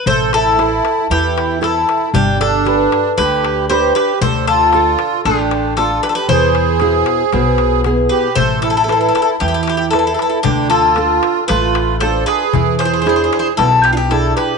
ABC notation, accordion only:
X:1
M:4/4
L:1/16
Q:1/4=116
K:Am
V:1 name="Accordion"
A2 E6 E4 E4 | D2 D6 G4 G2 G2 | A2 F6 D4 F2 G/2 F/2 G | ^G12 z2 =G2 |
A2 E6 E4 E4 | D2 F6 F4 A2 ^G2- | ^G2 G6 E2 E/2 D/2 E E2 =G2 |]